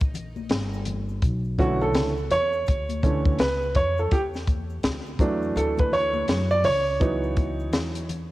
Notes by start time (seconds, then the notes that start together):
Already playing: A#1 D#4
0.00 kick, closed hi-hat, shaker
0.14 closed hi-hat, low conga, shaker
0.36 high conga, shaker
0.50 G1, snare, closed hi-hat, shaker
0.73 shaker
0.86 closed hi-hat, high conga, low conga, shaker
1.09 shaker
1.22 B1, kick, closed hi-hat, shaker
1.45 shaker
1.58 D3 E3 A3 C#4 F#4, kick, closed hi-hat, high conga, shaker
1.81 A4, shaker
1.94 C#2, snare, closed hi-hat, shaker
2.17 shaker
2.30 E2 C#5, closed hi-hat, low conga, shaker
2.53 shaker
2.66 D2, kick, closed hi-hat, shaker
2.89 closed hi-hat, high conga, shaker
3.03 D3 E3 A3 C#4, kick, closed hi-hat, low conga, shaker
3.25 kick, high conga, shaker
3.38 C#2 B4, snare, closed hi-hat, shaker
3.62 shaker
3.75 F2 C#5, kick, closed hi-hat, low conga, shaker
3.97 A4, shaker
4.11 E2 G4, kick, closed hi-hat, shaker
4.34 snare, shaker
4.47 kick, closed hi-hat, high conga, shaker
4.70 shaker
4.83 D2, snare, closed hi-hat, shaker
5.06 shaker
5.19 E2 E3 F#3 A3 D4, kick, closed hi-hat, low conga, shaker
5.42 shaker
5.55 D2 A4, closed hi-hat, shaker
5.77 B4, kick, closed hi-hat, high conga, shaker
5.92 C#5, closed hi-hat, low conga, shaker
6.13 high conga, shaker
6.28 F#2, snare, closed hi-hat, shaker
6.51 D5, shaker
6.64 C#2 C#5, open hi-hat, low conga, shaker
6.87 shaker
7.00 E3 F#3 B3 D#4, kick, closed hi-hat, shaker
7.23 shaker
7.37 kick, closed hi-hat, high conga, shaker
7.59 shaker
7.73 E2, snare, closed hi-hat, shaker
7.95 closed hi-hat, shaker
8.09 closed hi-hat, low conga, shaker